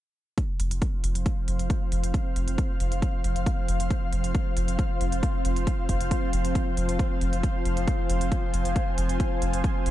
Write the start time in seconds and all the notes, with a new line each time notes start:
0.38 F3 C4, kick, closed hi-hat
0.47 F4
0.52 C5 F5
0.60 F1, closed hi-hat
0.71 F1, closed hi-hat
0.82 kick, closed hi-hat
1.04 F1, closed hi-hat
1.15 F1, closed hi-hat
1.26 kick, closed hi-hat
1.48 F1, closed hi-hat
1.59 F1, closed hi-hat
1.70 kick, closed hi-hat
1.92 F1, closed hi-hat
2.03 F1, closed hi-hat
2.14 kick, closed hi-hat
2.36 F1, closed hi-hat
2.48 F1, closed hi-hat
2.58 kick, closed hi-hat
2.80 F1, closed hi-hat
2.92 F1, closed hi-hat
3.02 kick, closed hi-hat
3.24 F1, closed hi-hat
3.36 F1, closed hi-hat
3.46 kick, closed hi-hat
3.68 F1, closed hi-hat
3.80 F1, closed hi-hat
3.90 kick, closed hi-hat
4.13 F1, closed hi-hat
4.24 F1, closed hi-hat
4.35 kick, closed hi-hat
4.57 F1, closed hi-hat
4.68 F1, closed hi-hat
4.79 kick, closed hi-hat
5.01 F1, closed hi-hat
5.12 F1, closed hi-hat
5.23 kick, closed hi-hat
5.45 F1, closed hi-hat
5.56 F1, closed hi-hat
5.67 kick, closed hi-hat
5.89 F1, kick, closed hi-hat
6.01 F1, closed hi-hat
6.11 kick, closed hi-hat
6.33 F1, closed hi-hat
6.45 F1, closed hi-hat
6.55 kick, closed hi-hat
6.77 F1, closed hi-hat
6.89 F1, closed hi-hat
6.99 kick, closed hi-hat
7.21 F1, closed hi-hat
7.33 F1, closed hi-hat
7.43 kick, closed hi-hat
7.61 G#5
7.65 F1, closed hi-hat
7.77 F1, closed hi-hat
7.88 kick, closed hi-hat
8.10 F1, closed hi-hat
8.21 F1, closed hi-hat
8.32 kick, closed hi-hat
8.54 F1, closed hi-hat
8.65 F1, closed hi-hat
8.76 kick, closed hi-hat
8.98 F1, closed hi-hat
9.09 F1, closed hi-hat
9.20 kick, closed hi-hat
9.42 F1, closed hi-hat
9.53 F1, closed hi-hat
9.64 kick, closed hi-hat
9.86 F1, closed hi-hat